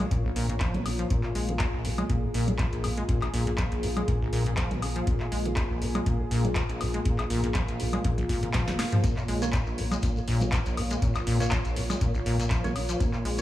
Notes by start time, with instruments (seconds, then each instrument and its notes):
Already playing: analog synth pad A#3 F4 C#5
0.11 analog synth bass A#1, acid bass A#2, kick, closed hi-hat
0.25 acid bass A#1
0.36 analog synth bass A#1, acid bass A#2, open hi-hat
0.49 acid bass A#2, closed hi-hat
0.60 acid bass F3, kick, clap, closed hi-hat
0.74 analog synth bass A#1, acid bass A#2, closed hi-hat, low conga
0.85 acid bass D#3, open hi-hat, high woodblock
0.99 acid bass F3, closed hi-hat
1.10 acid bass A#2, analog synth pad G#4, kick, closed hi-hat
1.23 acid bass A#2, clap
1.35 analog synth bass A#1, acid bass G#3, open hi-hat
1.49 acid bass A#2, closed hi-hat
1.59 acid bass A#2, kick, clap, closed hi-hat
1.73 analog synth bass A#1, acid bass A#1
1.85 acid bass D#3, open hi-hat
1.98 acid bass G#3, closed hi-hat, low conga, high woodblock
2.10 analog synth bass A#1, acid bass A#2, kick, closed hi-hat
2.23 acid bass G#2
2.34 analog synth bass A#1, acid bass A#2, open hi-hat
2.48 acid bass C#4, closed hi-hat, low conga
2.59 acid bass F3, kick, clap, closed hi-hat
2.72 analog synth bass A#1, acid bass A#1, closed hi-hat
2.84 acid bass D#3, open hi-hat, high woodblock
2.97 acid bass G#3, closed hi-hat
3.09 acid bass A#2, kick, closed hi-hat
3.22 acid bass A#1, clap, closed hi-hat, high woodblock
3.33 analog synth bass A#1, acid bass A#2, open hi-hat
3.47 acid bass A#2, closed hi-hat
3.58 acid bass F3, kick, clap, closed hi-hat
3.72 acid bass A#1, analog synth bass A#1, closed hi-hat
3.83 acid bass D#3, open hi-hat
3.96 acid bass G#3, closed hi-hat, low conga, high woodblock
4.08 analog synth bass A#1, acid bass A#2, kick, closed hi-hat
4.21 acid bass A#1
4.33 analog synth bass A#1, acid bass A#2, open hi-hat
4.46 acid bass A#2, closed hi-hat
4.57 acid bass F3, kick, clap, closed hi-hat
4.71 analog synth bass A#1, acid bass A#2, closed hi-hat, low conga
4.82 acid bass D#3, open hi-hat, high woodblock
4.96 acid bass F3, closed hi-hat
5.07 acid bass A#2, kick, closed hi-hat
5.20 acid bass A#2, clap
5.32 analog synth bass A#1, acid bass G#3, open hi-hat
5.45 acid bass A#2, closed hi-hat
5.56 acid bass A#2, kick, clap, closed hi-hat
5.70 analog synth bass A#1, acid bass A#1
5.82 acid bass D#3, open hi-hat
5.95 acid bass G#3, closed hi-hat, low conga, high woodblock
6.06 analog synth bass A#1, acid bass A#2, kick, closed hi-hat
6.20 acid bass G#2
6.31 analog synth bass A#1, acid bass A#2, open hi-hat
6.45 acid bass C#4, closed hi-hat, low conga
6.55 acid bass F3, kick, clap, closed hi-hat
6.69 analog synth bass A#1, acid bass A#1, closed hi-hat
6.81 acid bass D#3, open hi-hat, high woodblock
6.94 acid bass G#3, closed hi-hat
7.05 acid bass A#2, kick, closed hi-hat
7.18 acid bass A#1, clap, closed hi-hat, high woodblock
7.30 analog synth bass A#1, acid bass A#2, open hi-hat
7.44 acid bass A#2, closed hi-hat
7.54 acid bass F3, kick, clap, closed hi-hat
7.68 acid bass A#1, analog synth bass A#1, closed hi-hat
7.80 acid bass D#3, open hi-hat
7.93 acid bass G#3, closed hi-hat, low conga, high woodblock
8.04 analog synth bass A#1, acid bass A#2, kick, closed hi-hat, high tom
8.18 acid bass A#1, closed hi-hat, high tom
8.29 acid bass A#2, analog synth bass A#2, kick, open hi-hat
8.43 acid bass A#2, closed hi-hat, mid tom
8.54 acid bass F3, kick, snare, clap, closed hi-hat
8.68 analog synth bass F1, acid bass A#2, snare, closed hi-hat, low conga
8.79 acid bass D#3, snare, open hi-hat, high woodblock
8.92 acid bass F3, closed hi-hat, mid tom
9.04 acid bass A#2, analog synth pad C#5, kick, closed hi-hat, shekere
9.17 acid bass A#2, clap, shekere
9.28 analog synth bass A#1, acid bass G#3, open hi-hat
9.42 acid bass A#2, synth stab A#3 F4 C#5, closed hi-hat, shekere
9.53 acid bass A#2, kick, clap, closed hi-hat, shekere
9.67 acid bass A#1, analog synth bass A#1, shekere
9.78 acid bass D#3, open hi-hat
9.91 acid bass G#3, closed hi-hat, low conga, high woodblock, shekere
10.03 analog synth bass A#1, acid bass A#2, kick, closed hi-hat, shekere
10.16 acid bass G#2, shekere
10.28 analog synth bass A#1, acid bass A#2, open hi-hat
10.41 acid bass C#4, closed hi-hat, low conga, shekere
10.52 acid bass F3, kick, clap, closed hi-hat, shekere
10.66 acid bass A#1, analog synth bass A#1, closed hi-hat, shekere
10.77 acid bass D#3, open hi-hat, high woodblock
10.91 acid bass G#3, closed hi-hat, shekere
11.02 acid bass A#2, kick, closed hi-hat, shekere
11.15 acid bass A#1, clap, closed hi-hat, high woodblock, shekere
11.27 analog synth bass A#1, acid bass A#2, open hi-hat
11.40 acid bass A#2, synth stab A#3 F4 C#5, closed hi-hat, shekere
11.51 acid bass F3, kick, clap, closed hi-hat, shekere
11.65 acid bass A#1, analog synth bass A#1, closed hi-hat, shekere
11.76 acid bass D#3, open hi-hat
11.90 acid bass G#3, closed hi-hat, low conga, high woodblock, shekere
12.01 analog synth bass A#1, acid bass A#2, kick, closed hi-hat, shekere
12.14 acid bass A#1, shekere
12.26 analog synth bass A#1, acid bass A#2, open hi-hat
12.39 acid bass A#2, closed hi-hat, shekere
12.50 acid bass F3, kick, clap, closed hi-hat, shekere
12.64 analog synth bass A#1, acid bass A#2, synth stab A#3 F4 C#5, closed hi-hat, low conga, shekere
12.75 acid bass D#3, open hi-hat, high woodblock
12.89 acid bass F3, closed hi-hat, shekere
13.00 acid bass A#2, kick, closed hi-hat, shekere
13.13 acid bass A#2, clap, shekere
13.25 analog synth bass A#1, acid bass G#3, open hi-hat
13.38 shekere